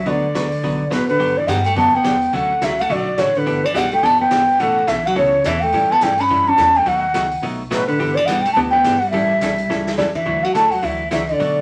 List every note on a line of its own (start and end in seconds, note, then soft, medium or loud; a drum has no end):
0.06 0.51 D2 medium
0.06 0.25 D3 medium
0.06 0.92 D3 medium
0.06 0.25 F#3 medium
0.06 0.26 B3 medium
0.06 0.26 F#4 medium
0.06 0.26 B4 medium
0.06 0.91 D5 medium
0.06 open hi-hat soft
0.35 0.45 D3 medium
0.35 0.45 F#3 medium
0.35 0.46 B3 medium
0.35 0.46 F#4 medium
0.35 0.46 B4 medium
0.35 snare medium
0.35 closed hi-hat medium
0.52 open hi-hat soft
0.63 0.87 B1 medium
0.63 0.82 D3 medium
0.63 0.83 F#3 medium
0.63 0.82 B3 medium
0.63 0.83 F#4 medium
0.63 0.83 B4 medium
0.63 open hi-hat soft
0.90 1.15 A1 medium
0.90 1.08 B2 medium
0.90 1.02 D3 medium
0.90 1.02 F#3 medium
0.90 1.02 B3 medium
0.90 1.02 F#4 medium
0.90 1.02 B4 medium
0.90 1.07 B4 medium
0.90 snare medium
0.90 closed hi-hat soft
1.08 1.35 D3 medium
1.08 1.39 B4 medium
1.08 open hi-hat soft
1.19 1.47 G1 medium
1.19 1.38 D3 medium
1.19 1.39 F#3 soft
1.19 1.39 B3 medium
1.19 1.39 D4 medium
1.19 1.39 G4 medium
1.19 open hi-hat soft
1.37 1.49 E3 medium
1.37 1.49 D5 medium
1.47 1.75 G2 medium
1.47 1.59 D3 medium
1.47 1.59 F#3 medium
1.47 1.66 G3 medium
1.47 1.59 B3 medium
1.47 1.59 D4 medium
1.47 1.59 G4 medium
1.47 1.67 F#5 medium
1.47 snare medium
1.47 closed hi-hat medium
1.64 1.77 A3 medium
1.64 1.77 G5 medium
1.64 open hi-hat soft
1.76 1.92 F#2 medium
1.76 1.95 D3 medium
1.76 1.96 F#3 medium
1.76 1.96 B3 medium
1.76 1.93 B3 medium
1.76 1.96 D4 medium
1.76 1.96 G4 medium
1.76 1.97 A5 loud
1.76 open hi-hat medium
1.94 2.35 B3 medium
1.94 2.36 G5 loud
1.94 muted upright bass stroke soft
2.04 2.32 E2 medium
2.04 2.15 D3 medium
2.04 2.15 F#3 medium
2.04 2.15 B3 medium
2.04 2.15 D4 medium
2.04 2.15 G4 medium
2.04 snare medium
2.04 closed hi-hat medium
2.22 open hi-hat soft
2.33 2.61 D2 medium
2.33 2.52 D3 medium
2.33 2.52 F#3 medium
2.33 2.52 A3 medium
2.33 2.64 A3 medium
2.33 2.52 C#4 medium
2.33 2.52 F#4 medium
2.33 2.65 F#5 loud
2.33 open hi-hat soft
2.61 2.89 C#2 medium
2.61 2.72 D3 medium
2.61 2.72 F#3 medium
2.61 2.81 F#3 medium
2.61 2.72 A3 medium
2.61 2.72 C#4 medium
2.61 2.72 F#4 medium
2.61 2.82 E5 medium
2.61 snare medium
2.61 closed hi-hat medium
2.79 2.92 A3 medium
2.79 2.93 F#5 loud
2.79 open hi-hat soft
2.89 3.17 B1 medium
2.89 3.09 D3 medium
2.89 3.09 F#3 medium
2.89 3.21 F#3 medium
2.89 3.09 A3 medium
2.89 3.09 C#4 medium
2.89 3.09 F#4 medium
2.89 3.20 D5 medium
2.89 open hi-hat soft
3.18 3.45 A1 medium
3.18 3.29 D3 medium
3.18 3.36 D3 medium
3.18 3.29 F#3 medium
3.18 3.29 A3 medium
3.18 3.29 C#4 medium
3.18 3.29 F#4 medium
3.18 3.39 C#5 medium
3.18 snare medium
3.18 closed hi-hat medium
3.35 3.66 D3 medium
3.35 3.67 B4 medium
3.35 open hi-hat soft
3.46 3.74 G1 medium
3.46 3.65 E3 medium
3.46 3.65 B3 medium
3.46 3.66 D4 medium
3.46 3.66 G4 medium
3.46 open hi-hat soft
3.65 3.78 E3 medium
3.65 3.78 D5 medium
3.74 4.02 B1 loud
3.74 3.85 E3 medium
3.74 3.93 G3 medium
3.74 3.85 B3 medium
3.74 3.85 D4 medium
3.74 3.85 G4 medium
3.74 3.93 F#5 loud
3.74 snare medium
3.74 closed hi-hat medium
3.91 4.06 A3 medium
3.91 4.05 G5 loud
3.91 open hi-hat soft
4.03 4.30 F#1 medium
4.03 4.22 E3 medium
4.03 4.22 B3 medium
4.03 4.20 B3 medium
4.03 4.22 D4 medium
4.03 4.22 G4 medium
4.03 4.20 A5 loud
4.03 open hi-hat soft
4.20 4.57 B3 medium
4.20 4.62 G5 loud
4.31 4.58 G1 medium
4.31 4.42 E3 medium
4.31 4.42 B3 medium
4.31 4.42 D4 medium
4.31 4.42 G4 medium
4.31 snare medium
4.31 closed hi-hat medium
4.49 open hi-hat soft
4.59 4.86 A1 medium
4.59 4.79 B2 medium
4.59 4.79 E3 medium
4.59 4.79 A3 medium
4.59 4.79 C#4 medium
4.59 4.79 A4 medium
4.59 4.90 F#5 loud
4.59 open hi-hat soft
4.63 4.89 A3 loud
4.87 5.15 B1 loud
4.87 4.98 B2 medium
4.87 4.98 E3 medium
4.87 5.07 E3 medium
4.87 4.98 A3 medium
4.87 4.98 C#4 medium
4.87 4.99 A4 medium
4.87 5.08 E5 loud
4.87 snare medium
4.87 closed hi-hat medium
5.06 5.17 F#3 medium
5.06 5.17 F#5 loud
5.16 5.43 C#2 medium
5.16 5.35 B2 medium
5.16 5.46 C#3 medium
5.16 5.35 E3 medium
5.16 5.35 A3 medium
5.16 5.35 C#4 medium
5.16 5.35 A4 medium
5.16 5.48 C#5 loud
5.16 open hi-hat soft
5.44 5.71 E2 medium
5.44 5.55 B2 medium
5.44 5.56 E3 medium
5.44 5.62 E3 medium
5.44 5.56 A3 medium
5.44 5.56 C#4 medium
5.44 5.56 A4 medium
5.44 5.64 E5 loud
5.44 snare medium
5.44 closed hi-hat medium
5.61 5.92 A3 medium
5.61 5.93 G5 loud
5.61 open hi-hat soft
5.72 5.88 A2 medium
5.72 5.92 E3 medium
5.72 5.92 G3 medium
5.72 5.93 C#4 medium
5.72 5.93 E4 medium
5.72 5.93 A4 medium
5.72 open hi-hat soft
5.90 6.04 B3 medium
5.90 6.05 A5 loud
5.90 muted upright bass stroke soft
6.01 6.29 G2 medium
6.01 6.12 E3 medium
6.01 6.13 G3 medium
6.01 6.20 A3 medium
6.01 6.13 C#4 medium
6.01 6.13 E4 medium
6.01 6.13 A4 medium
6.01 6.22 G5 loud
6.01 snare medium
6.01 closed hi-hat medium
6.18 6.47 C#4 medium
6.18 6.50 B5 loud
6.18 open hi-hat soft
6.28 6.57 F#2 medium
6.28 6.49 E3 medium
6.28 6.49 G3 medium
6.28 6.49 C#4 medium
6.28 6.49 E4 medium
6.28 6.50 A4 medium
6.28 open hi-hat soft
6.48 6.78 C#4 medium
6.48 6.78 A5 loud
6.57 6.85 E2 loud
6.57 6.68 E3 medium
6.57 6.69 G3 medium
6.57 6.69 C#4 medium
6.57 6.69 E4 medium
6.57 6.69 A4 medium
6.57 snare medium
6.57 closed hi-hat medium
6.75 6.87 A3 medium
6.75 6.89 G5 loud
6.75 open hi-hat soft
6.86 7.13 D#2 medium
6.86 7.05 B2 soft
6.86 7.45 D#3 medium
6.86 7.05 F#3 medium
6.86 7.05 A3 medium
6.86 7.06 D#4 medium
6.86 7.06 F#4 medium
6.86 7.45 F#5 loud
6.86 open hi-hat medium
7.14 7.41 C#2 medium
7.14 7.25 B2 medium
7.14 7.25 F#3 medium
7.14 7.25 A3 medium
7.14 7.26 D#4 medium
7.14 7.26 F#4 medium
7.14 snare medium
7.14 closed hi-hat medium
7.31 open hi-hat soft
7.42 7.70 B1 loud
7.42 7.62 B2 medium
7.42 7.62 F#3 medium
7.42 7.62 A3 medium
7.42 7.62 D#4 medium
7.42 7.62 F#4 medium
7.42 open hi-hat soft
7.71 7.98 A1 medium
7.71 7.87 A2 medium
7.71 7.82 B2 medium
7.71 7.82 F#3 medium
7.71 7.82 A3 medium
7.71 7.82 D#4 medium
7.71 7.82 F#4 medium
7.71 7.86 B4 loud
7.71 snare medium
7.71 closed hi-hat medium
7.87 8.17 D3 medium
7.87 8.17 B4 medium
7.87 open hi-hat soft
7.99 8.27 G1 medium
7.99 8.19 E3 medium
7.99 8.19 B3 medium
7.99 8.19 D4 medium
7.99 8.19 G4 medium
7.99 open hi-hat soft
8.15 8.27 E3 medium
8.15 8.27 D5 loud
8.26 8.55 B1 medium
8.26 8.38 E3 medium
8.26 8.46 G3 medium
8.26 8.39 B3 medium
8.26 8.39 D4 medium
8.26 8.39 G4 medium
8.26 8.43 F#5 loud
8.26 snare medium
8.26 closed hi-hat medium
8.42 8.52 G5 loud
8.42 open hi-hat soft
8.46 8.57 A3 medium
8.53 8.84 D2 medium
8.53 8.76 E3 medium
8.53 8.62 B3 loud
8.53 8.76 B3 medium
8.53 8.59 A5 loud
8.53 open hi-hat soft
8.57 8.76 D4 medium
8.57 8.76 G4 medium
8.71 9.01 B3 medium
8.71 9.01 G5 loud
8.84 9.12 G1 loud
8.84 8.95 E3 medium
8.84 8.95 B3 medium
8.84 8.96 D4 medium
8.84 8.96 G4 medium
8.84 snare medium
8.84 closed hi-hat medium
8.99 9.11 G3 medium
8.99 9.10 F#5 loud
8.99 open hi-hat soft
9.10 9.40 A1 medium
9.10 9.32 E3 medium
9.10 9.98 G3 medium
9.10 9.32 G3 medium
9.10 9.33 C#4 medium
9.10 9.33 E4 medium
9.10 9.33 A4 medium
9.10 9.93 E5 loud
9.10 open hi-hat soft
9.41 9.68 B1 medium
9.41 9.52 E3 medium
9.41 9.53 G3 medium
9.41 9.53 C#4 medium
9.41 9.53 E4 medium
9.41 9.53 A4 medium
9.41 snare medium
9.41 closed hi-hat medium
9.58 open hi-hat soft
9.69 9.97 C#2 medium
9.69 9.89 E3 medium
9.69 9.89 G3 medium
9.69 9.89 C#4 medium
9.69 9.89 E4 medium
9.69 9.89 A4 medium
9.69 snare medium
9.87 snare medium
9.98 10.25 E2 medium
9.98 10.09 E3 medium
9.98 10.09 G3 medium
9.98 10.04 G3 medium
9.98 10.09 C#4 medium
9.98 10.09 E4 medium
9.98 10.09 A4 medium
9.98 10.04 D5 medium
9.98 snare medium
10.15 10.44 E3 medium
10.15 10.45 E5 loud
10.15 kick medium
10.15 crash medium
10.26 10.49 D2 medium
10.26 10.45 D3 medium
10.26 10.45 F#3 medium
10.26 10.45 A3 medium
10.26 10.46 E4 medium
10.26 10.46 F#4 medium
10.44 10.55 F#3 medium
10.44 10.54 F#5 medium
10.54 10.79 E2 medium
10.54 10.65 D3 medium
10.54 10.65 F#3 medium
10.54 10.66 A3 medium
10.54 10.73 A3 medium
10.54 10.65 E4 medium
10.54 10.66 F#4 medium
10.54 10.73 A5 loud
10.54 snare medium
10.54 closed hi-hat medium
10.71 10.85 F#3 medium
10.71 10.85 F#5 medium
10.71 open hi-hat soft
10.83 11.07 D2 medium
10.83 11.02 D3 soft
10.83 11.12 E3 medium
10.83 11.02 F#3 medium
10.83 11.02 A3 medium
10.83 11.03 E4 medium
10.83 11.03 F#4 medium
10.83 11.12 E5 loud
10.83 open hi-hat soft
11.11 11.35 C#2 medium
11.11 11.22 D3 medium
11.11 11.31 E3 medium
11.11 11.22 F#3 medium
11.11 11.22 A3 medium
11.11 11.22 E4 medium
11.11 11.22 F#4 medium
11.11 11.31 E5 medium
11.11 snare medium
11.11 closed hi-hat medium
11.29 11.61 D3 medium
11.29 11.34 D#5 medium
11.29 open hi-hat soft
11.33 11.61 D5 medium
11.39 11.61 B1 medium
11.39 11.59 B2 medium
11.39 11.59 F#3 medium
11.39 11.59 A3 medium
11.39 11.60 D4 medium
11.39 11.60 F#4 medium
11.39 open hi-hat soft